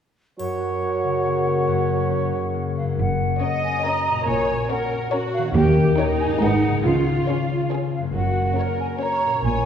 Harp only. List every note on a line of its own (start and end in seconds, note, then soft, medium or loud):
0.39 1.66 F#2 soft
0.60 1.88 F#4 soft
0.82 1.45 C#4 soft
1.04 2.31 C#3 soft
1.26 2.53 A#3 soft
1.47 2.09 C#4 soft
1.68 2.78 F#2 medium
1.89 2.92 F#4 soft
2.11 2.74 C#4 soft
2.32 3.00 C#3 soft
2.54 2.83 A#3 soft
2.76 4.19 F#2 soft
2.76 2.87 C#4 soft
2.84 4.13 A#3 soft
2.88 4.17 C#4 soft
2.93 4.22 F#4 soft
4.09 5.49 A#2 soft
4.14 5.41 A#3 soft
4.18 5.45 C#4 soft
4.23 5.56 F#4 soft
5.38 6.34 D#3 medium
5.42 6.37 A#3 soft
5.47 6.39 C#4 soft
5.51 6.41 A#4 soft
6.24 6.78 G#2 soft
6.28 6.71 G#3 soft
6.33 6.82 D#4 soft
6.38 6.85 B4 soft
6.67 8.08 C#3 soft
6.72 8.10 G#3 soft
6.76 8.06 C#4 soft
6.81 8.10 C#5 soft
7.98 9.38 F#2 soft
8.02 9.30 A#3 soft
8.07 9.34 C#4 soft
8.11 9.39 C#5 soft
9.26 9.65 A#2 soft
9.31 9.65 A#3 soft
9.36 9.65 C#4 soft
9.40 9.65 C#5 soft